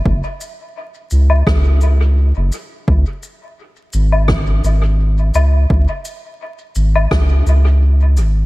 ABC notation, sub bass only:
X:1
M:4/4
L:1/16
Q:"Swing 16ths" 1/4=85
K:C#phr
V:1 name="Sub bass" clef=bass
F,,, z4 z C,,2 C,,4- C,, F,,, z2 | C,, z4 z G,,,4 G,,,4 C,,2 | C,, z4 z G,,,2 C,,2 C,,4 G,,,2 |]